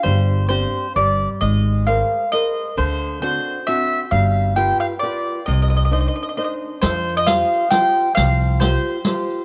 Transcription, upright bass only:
X:1
M:3/4
L:1/8
Q:"Swing" 1/4=133
K:Cm
V:1 name="Upright bass" clef=bass
G,,,4 G,,,2 | A,,,4 z2 | D,,4 z2 | G,,,4 z2 |
C,,4 z2 | [K:Cphr] F,,4 z2 | C,,4 z2 |]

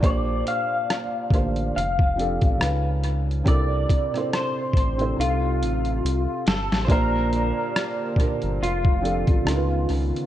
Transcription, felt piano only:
X:1
M:4/4
L:1/16
Q:"Swing 16ths" 1/4=70
K:F
V:1 name="Felt piano"
[B,,B,DGc]4- [B,,B,DGc] z [D,B,DGc]2 z2 [F,CDGA]2 [_D,_D_EF_c]3 z | [C,CDEAB]2 z [C,CDEAc]3 z [C,CDEAc] [C,C_EGA]6 z2 | [B,,B,DGc]4- [B,,B,DGc] z [B,,B,DGB]2 z2 [F,CDGA]2 [_D,_D_EFB_c]3 z |]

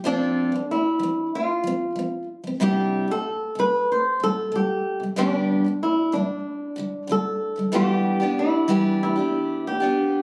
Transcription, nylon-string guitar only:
X:1
M:4/4
L:1/16
Q:1/4=94
K:Ephr
V:1 name="Nylon-string guitar"
D4 E4 F6 z2 | G3 A3 B2 c2 A2 G3 z | D4 E2 D6 A4 | G4 E4 E4 G4 |]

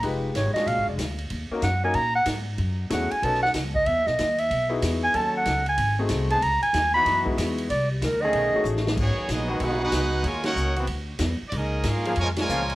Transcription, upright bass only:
X:1
M:4/4
L:1/8
Q:"Swing" 1/4=188
K:B
V:1 name="Upright bass" clef=bass
=F,,,2 _A,,, z (3^A,,, G,,, ^E,,, =D,,2 | D,, z F,,2 A,,2 G,,2 | F,,2 E,, z B,,,2 C,,2 | (3E,, D,, B,,, D,,2 B,,,2 E,,2 |
D,,2 C,,2 G,,,2 ^B,,,2 | C,, z D,,2 F,,2 E,,2 | =C,,2 =D,,2 B,,, z =A,,,2 | [K:G#m] G,,, z A,,,2 B,,,2 C,,2 |
D,,2 C,,2 =D,,2 E,, z | C,,2 G,,2 ^E,,2 C,,2 |]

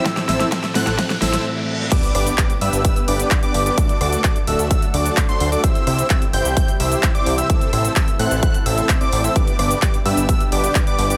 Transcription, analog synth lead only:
X:1
M:4/4
L:1/16
Q:1/4=129
K:G
V:1 name="Analog synth lead"
e'2 e'2 e' z f'2 f' z e'2 z4 | d'2 d'2 z2 e'2 e' z d'3 d'2 d' | d'2 d'2 z2 e'2 e' z d'3 c'2 d' | e'2 e'2 e' z g'2 g' z e'3 d'2 e' |
e'2 e'2 e' z f'2 f' z e'3 d'2 e' | d'2 d'2 d' z e'2 e' z d'3 d'2 d' |]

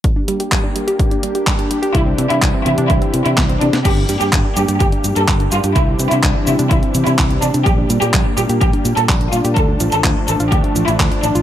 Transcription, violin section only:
X:1
M:4/4
L:1/16
Q:1/4=126
K:Gdor
V:1 name="Violin section"
z16 | E3 E3 E2 E3 E3 D2 | G3 G3 G2 G3 A3 F2 | E3 E3 E2 E3 E3 D2 |
G3 G3 G2 G3 A3 F2 | A3 A3 A2 G3 E3 D2 |]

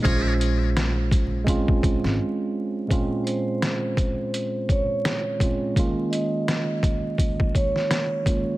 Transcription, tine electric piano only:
X:1
M:4/4
L:1/8
Q:"Swing 16ths" 1/4=84
K:Bbm
V:1 name="Tine electric piano"
[A,DFc]3 z [A,CDF]3 z | [B,,A,CDF]3 z4 [B,,A,CDF] | [E,A,B,DF]3 z4 [E,A,B,DF] |]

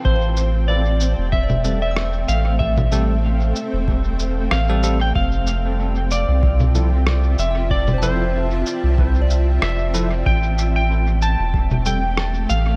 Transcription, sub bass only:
X:1
M:4/4
L:1/16
Q:"Swing 16ths" 1/4=94
K:Am
V:1 name="Sub bass" clef=bass
A,,,6- A,,, E,,,6- E,,, A,,,2- | A,,,6 z E,,,4- E,,, A,,,4 | F,,,6- F,,, C,,6- C,, F,,,2- | F,,,6 z C,,4- C,, F,,,4 |
A,,,6- A,,, E,,,6- E,,, A,,,2 |]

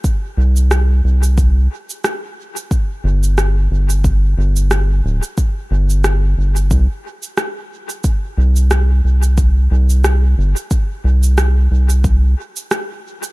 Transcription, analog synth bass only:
X:1
M:4/4
L:1/8
Q:"Swing 16ths" 1/4=90
K:Gphr
V:1 name="Analog synth bass" clef=bass
z C,,2 C,,2 z3 | z G,,,2 G,,,2 G,,,2 D,,, | z G,,,2 G,,, C,, z3 | z C,,2 C,,2 C,,2 G,,, |
z C,,2 C,,2 z3 |]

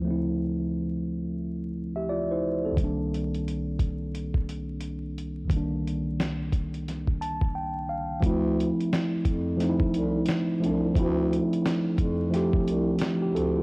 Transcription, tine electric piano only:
X:1
M:4/4
L:1/16
Q:"Swing 16ths" 1/4=88
K:Dphr
V:1 name="Tine electric piano"
z8 z3 [G=e] [Fd] [=Ec]2 [CA]- | [CA] z12 z3 | z8 z2 a2 g2 f2 | z16 |
z12 z G [CA] [A,F] |]
V:2 name="Tine electric piano"
[D,,F,A,C=E]16 | [C,,E,G,B,D]16 | [C,,E,G,B,D]16 | [F,A,C=E]6- [F,A,CE] z [F,A,C_E=E]6 [F,A,CD]2 |
[F,A,C=E]6- [F,A,CE] z [F,A,CG]6 z2 |]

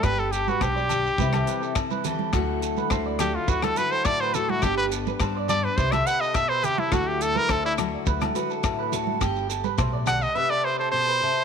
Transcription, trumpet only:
X:1
M:4/4
L:1/16
Q:1/4=105
K:Dmix
V:1 name="Trumpet"
B A G F G8 z4 | z6 G =F ^F A B c d c A F | G B z4 d B c e f _e =e c G E | F G A _B A E z8 z2 |
z6 f _e =e d c c c4 |]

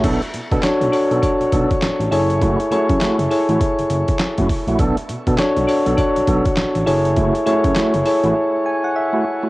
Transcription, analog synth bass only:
X:1
M:4/4
L:1/16
Q:"Swing 16ths" 1/4=101
K:Bdor
V:1 name="Analog synth bass" clef=bass
B,,, z B,, B,, z B,,, z B,,, z B,,, B,,, z A,,, A,,, F,,,2- | F,,,2 F,, F,, z F,,, z A,,, z F,,, F,,, z2 F,, z ^A,,, | B,,, z B,, B,, z B,,, z B,,, z B,,, B,,, z A,,, A,,, F,,,2- | F,,,2 F,, F,, z F,,, z A,,, z8 |]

